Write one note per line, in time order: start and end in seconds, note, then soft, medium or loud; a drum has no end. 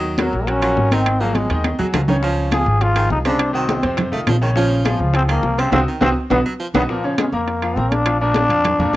0.00 0.28 D#2 medium
0.00 0.13 D#3 medium
0.00 0.34 F#3 loud
0.00 0.13 D#4 medium
0.00 0.14 D#5 medium
0.04 high conga soft
0.18 0.43 F#3 medium
0.18 0.50 F#3 medium
0.18 0.43 F#4 medium
0.18 0.43 A#4 medium
0.18 high bongo medium
0.18 high conga loud
0.18 high timbale medium
0.18 claves medium
0.33 0.74 A#1 medium
0.33 high bongo soft
0.33 high conga soft
0.47 0.60 F#3 medium
0.47 0.94 C#4 loud
0.47 0.60 F#4 medium
0.47 0.61 A#4 medium
0.47 high bongo medium
0.47 high conga soft
0.47 high timbale medium
0.61 0.77 F3 medium
0.61 0.87 F#3 medium
0.61 0.87 F#4 medium
0.61 0.87 A#4 medium
0.61 high bongo soft
0.61 high conga soft
0.61 high timbale medium
0.61 claves medium
0.77 1.45 G#1 medium
0.77 high bongo soft
0.77 low bongo medium
0.77 high conga soft
0.91 1.16 D#3 medium
0.91 1.07 D#3 medium
0.91 1.22 C4 medium
0.91 1.16 D#4 medium
0.91 1.16 D#5 medium
0.91 high bongo soft
0.91 high conga medium
0.91 high timbale medium
1.06 high bongo medium
1.06 high conga soft
1.06 high timbale loud
1.06 claves medium
1.20 1.53 F3 medium
1.20 1.45 F#3 medium
1.20 1.38 A#3 medium
1.20 1.45 F#4 medium
1.20 1.45 G#4 medium
1.20 high conga soft
1.35 1.65 G#3 medium
1.35 high bongo medium
1.35 high conga medium
1.35 high timbale medium
1.50 1.77 D#2 loud
1.50 1.74 D#3 medium
1.50 1.74 D#4 medium
1.50 1.74 D#5 medium
1.50 high bongo soft
1.50 high timbale medium
1.64 high bongo medium
1.64 high conga medium
1.64 high timbale medium
1.64 claves medium
1.79 1.92 D#2 medium
1.79 1.86 F#3 medium
1.79 2.03 F#3 medium
1.79 2.03 F#4 medium
1.79 2.03 G#4 medium
1.79 high bongo soft
1.79 low conga medium
1.93 2.61 C#2 medium
1.93 2.01 F3 medium
1.93 high bongo soft
1.93 low bongo medium
1.93 low conga loud
1.93 high timbale medium
1.93 claves medium
2.08 2.20 C#3 medium
2.08 2.16 D#3 medium
2.08 2.20 C#4 medium
2.08 2.21 C#5 medium
2.08 high bongo soft
2.08 low conga loud
2.22 2.47 C#3 medium
2.22 2.66 F3 loud
2.22 2.47 C#4 medium
2.22 2.47 C#5 medium
2.22 high bongo medium
2.22 high conga soft
2.38 high conga soft
2.52 2.77 F3 medium
2.52 2.77 F4 medium
2.52 2.77 G#4 medium
2.52 2.84 G#4 loud
2.52 high bongo medium
2.52 high conga loud
2.52 high timbale medium
2.52 claves medium
2.66 3.07 G#1 loud
2.66 high bongo soft
2.66 high conga soft
2.81 2.94 F3 medium
2.81 3.11 F4 loud
2.81 2.94 F4 medium
2.81 2.94 G#4 medium
2.81 high bongo medium
2.81 high conga soft
2.81 high timbale medium
2.95 3.11 D#3 medium
2.95 3.20 F3 medium
2.95 3.20 F4 medium
2.95 3.20 G#4 medium
2.95 high bongo soft
2.95 high conga soft
2.95 high timbale medium
2.95 claves medium
3.10 3.78 C2 medium
3.10 3.18 D#4 medium
3.10 high bongo soft
3.10 low bongo medium
3.10 high conga soft
3.25 3.49 C3 medium
3.25 3.40 C#3 medium
3.25 3.49 C4 medium
3.25 3.53 D4 medium
3.25 3.49 C5 medium
3.25 high bongo soft
3.25 high timbale medium
3.39 high bongo medium
3.39 high conga soft
3.39 high timbale loud
3.39 claves medium
3.53 3.78 D#3 medium
3.53 3.87 D#3 medium
3.53 3.95 C4 medium
3.53 3.78 D#4 medium
3.53 3.78 F#4 medium
3.53 high conga soft
3.69 high bongo medium
3.69 high conga medium
3.69 high timbale medium
3.82 4.10 F2 medium
3.82 4.07 C3 medium
3.82 4.07 C4 medium
3.82 4.07 C5 medium
3.82 high bongo soft
3.82 high conga soft
3.82 high timbale medium
3.97 high bongo medium
3.97 high conga soft
3.97 low conga loud
3.97 high timbale medium
3.97 claves medium
4.12 4.26 C2 medium
4.12 4.36 D#3 medium
4.12 4.20 A3 medium
4.12 4.36 D#4 medium
4.12 4.36 F4 medium
4.12 high bongo soft
4.12 high conga soft
4.27 4.94 A#1 medium
4.27 4.36 F3 medium
4.27 high bongo soft
4.27 low bongo medium
4.27 high conga medium
4.27 high timbale loud
4.27 claves medium
4.41 4.54 C#3 medium
4.41 4.50 D#3 medium
4.41 4.54 C#4 medium
4.41 4.54 C#5 medium
4.41 high bongo soft
4.56 4.80 C#3 medium
4.56 4.99 F3 loud
4.56 4.80 C#4 medium
4.56 4.80 C#5 medium
4.56 high bongo medium
4.56 high conga soft
4.71 high conga soft
4.85 5.09 F3 medium
4.85 5.13 F3 medium
4.85 5.09 F4 medium
4.85 5.10 G#4 medium
4.85 high bongo medium
4.85 high conga medium
4.85 high timbale medium
4.85 claves medium
4.99 5.40 C#2 loud
4.99 high bongo soft
4.99 high conga soft
5.14 5.26 F3 medium
5.14 5.22 C4 loud
5.14 5.26 F4 medium
5.14 5.26 G#4 medium
5.14 high bongo medium
5.14 high conga soft
5.14 high timbale medium
5.28 5.44 D#3 medium
5.28 5.52 F3 medium
5.28 5.61 A#3 medium
5.28 5.53 F4 medium
5.28 5.53 G#4 medium
5.28 high bongo soft
5.28 high conga soft
5.28 high timbale loud
5.28 claves medium
5.43 5.70 C2 loud
5.43 high bongo soft
5.43 low bongo medium
5.43 high conga soft
5.58 5.70 C3 medium
5.58 5.74 C#3 medium
5.58 5.70 C4 medium
5.58 5.72 C4 medium
5.58 5.70 C5 medium
5.58 high bongo soft
5.58 high timbale medium
5.72 5.83 C2 loud
5.72 5.82 C4 loud
5.72 5.80 C4 loud
5.72 5.82 D#4 loud
5.72 5.82 F#4 loud
5.72 low bongo loud
5.72 high conga loud
5.72 high timbale loud
5.72 claves medium
5.88 6.20 D#3 medium
6.00 6.12 C2 loud
6.00 6.11 C4 medium
6.00 6.09 C4 loud
6.00 6.11 D#4 loud
6.00 6.10 F#4 loud
6.00 low bongo loud
6.00 high conga loud
6.00 high timbale loud
6.00 claves medium
6.30 6.41 B1 loud
6.30 6.40 B3 medium
6.30 6.39 B3 loud
6.30 6.40 D#4 medium
6.30 6.40 F#4 loud
6.30 low bongo loud
6.30 high conga loud
6.30 high timbale loud
6.30 claves medium
6.45 6.53 F#3 medium
6.59 6.67 F3 medium
6.74 6.85 B1 loud
6.74 6.83 D#3 medium
6.74 6.84 B3 medium
6.74 6.83 B3 loud
6.74 6.84 D#4 loud
6.74 6.84 F#4 loud
6.74 low bongo loud
6.74 high conga loud
6.74 high timbale loud
6.74 claves loud
6.89 7.02 A#2 medium
6.89 7.17 F3 medium
6.89 7.02 A#3 medium
6.89 7.02 A#4 medium
6.89 high bongo medium
6.89 high conga soft
7.04 7.28 C#3 medium
7.04 7.28 C#4 medium
7.04 7.28 C#5 medium
7.04 high conga soft
7.18 7.26 G#3 medium
7.18 high bongo medium
7.18 high conga loud
7.18 high timbale loud
7.18 claves medium
7.32 7.74 F2 medium
7.32 7.78 A#3 medium
7.32 7.57 A#3 medium
7.32 7.57 A#4 medium
7.32 7.58 A#5 medium
7.32 high bongo soft
7.32 high conga soft
7.47 high bongo medium
7.47 high conga soft
7.47 high timbale medium
7.62 7.75 F3 medium
7.62 7.75 F4 medium
7.62 7.75 F5 medium
7.62 high bongo soft
7.62 high conga soft
7.62 high timbale medium
7.62 claves medium
7.76 8.44 A#1 medium
7.76 8.01 A#3 medium
7.76 7.93 C4 medium
7.76 8.01 A#4 medium
7.76 8.02 A#5 medium
7.76 high bongo soft
7.76 low bongo medium
7.76 high conga soft
7.92 8.20 D4 loud
7.92 high bongo soft
7.92 high conga medium
7.92 high timbale medium
8.06 8.18 F3 medium
8.06 8.18 F4 medium
8.06 8.18 F5 medium
8.06 high bongo medium
8.06 high conga soft
8.06 high timbale loud
8.06 claves medium
8.21 8.45 A#2 medium
8.21 8.45 A#3 medium
8.21 8.96 D4 loud
8.21 8.45 A#4 medium
8.21 high conga soft
8.34 high bongo medium
8.34 high conga loud
8.34 high timbale medium
8.49 8.77 F2 loud
8.49 8.74 F3 medium
8.49 8.74 F4 medium
8.49 8.74 F5 medium
8.49 high bongo soft
8.49 high conga soft
8.49 high timbale medium
8.64 high bongo medium
8.64 high conga soft
8.64 low conga medium
8.64 high timbale medium
8.64 claves medium
8.78 8.92 F2 medium
8.78 8.96 A#2 medium
8.78 8.96 A#3 medium
8.78 8.96 A#4 medium
8.78 high bongo soft
8.78 high conga soft
8.78 low conga medium
8.93 8.96 D#2 medium